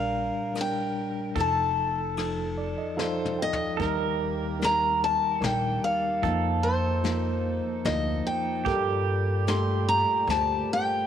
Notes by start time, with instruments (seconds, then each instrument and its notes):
Already playing: upright bass A#1, tine electric piano A#1 A#2 G3 D4 A#4, pedal steel guitar A#4, steel-string acoustic guitar F5
0.54 tine electric piano G3 D4 A#4, cross-stick, ride
0.61 steel-string acoustic guitar G5
1.35 tine electric piano F1 F2 F3 D#4 A4, upright bass F1, pedal steel guitar A4, kick, ride
1.40 steel-string acoustic guitar A5
2.17 tine electric piano F3 D#4 A4, cross-stick, ride
2.58 tine electric piano D5
2.78 tine electric piano D#5
2.97 tine electric piano F3 D#4 A4 F5, steel-string acoustic guitar C5, snare
3.26 mid tom
3.39 steel-string acoustic guitar D#5, tine electric piano G5
3.53 floor tom
3.77 tine electric piano D#2 D#3 G3 D#4 A#4, upright bass D#2, harmonium D#3 A#3 G4, pedal steel guitar A#4, kick, closed hi-hat
4.59 tine electric piano G3 D#4 A#4, snare, closed hi-hat
4.64 steel-string acoustic guitar A#5
5.04 steel-string acoustic guitar A5
5.36 pedal steel guitar A4
5.41 upright bass A#1, tine electric piano G3 D#4 A#4, steel-string acoustic guitar G5, snare, closed hi-hat
5.84 steel-string acoustic guitar F5
6.22 tine electric piano F1 F2 F3 A#3 D#4, upright bass F2, harmonium F3 A#3 D#4, pedal steel guitar A4, kick, closed hi-hat
6.63 steel-string acoustic guitar C5
7.03 tine electric piano F3 A#3 D#4, snare, closed hi-hat
7.84 upright bass D2, tine electric piano F3 A#3 D#4, steel-string acoustic guitar D#5, snare, closed hi-hat
8.27 steel-string acoustic guitar G5
8.65 tine electric piano G1 G2 G4 A4 A#4, upright bass G2, harmonium A#2 G3 G4, pedal steel guitar G4, kick, closed hi-hat
9.47 tine electric piano A3 G4 A4, steel-string acoustic guitar C6, snare, closed hi-hat
9.89 steel-string acoustic guitar A#5
10.27 upright bass D2, tine electric piano A3 G4 C5, steel-string acoustic guitar A5, snare, closed hi-hat
10.73 steel-string acoustic guitar G5